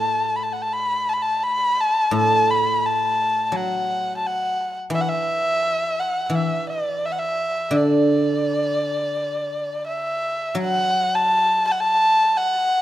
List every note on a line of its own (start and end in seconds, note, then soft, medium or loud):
0.00 1.43 A2 medium
0.00 0.37 A5 medium
0.36 0.44 B5 medium
0.43 0.54 A5 medium
0.53 0.63 F#5 medium
0.62 0.74 A5 medium
0.73 1.10 B5 medium
1.09 1.15 A5 medium
1.13 1.24 B5 medium
1.22 1.45 A5 medium
1.43 1.82 B5 medium
1.80 2.14 A5 medium
2.11 4.21 A2 medium
2.11 2.52 A5 medium
2.50 2.87 B5 medium
2.86 3.47 A5 medium
3.47 3.58 A5 medium
3.52 5.62 F#3 soft
3.56 4.16 F#5 medium
4.17 4.28 A5 medium
4.26 4.77 F#5 medium
4.90 6.28 E3 medium
4.95 5.02 E5 medium
5.01 5.10 F#5 medium
5.08 6.01 E5 medium
6.00 6.26 F#5 medium
6.26 8.42 E3 soft
6.26 6.36 F#5 medium
6.34 6.68 E5 medium
6.69 7.07 D5 medium
7.05 7.13 E5 medium
7.12 7.20 F#5 medium
7.19 7.78 E5 medium
7.71 9.85 D3 medium
7.77 9.87 D5 medium
9.87 10.54 E5 medium
10.55 12.69 F#3 medium
10.61 11.16 F#5 medium
11.15 11.66 A5 medium
11.67 11.73 A5 medium
11.72 11.82 F#5 medium
11.80 12.39 A5 medium
12.37 12.82 F#5 medium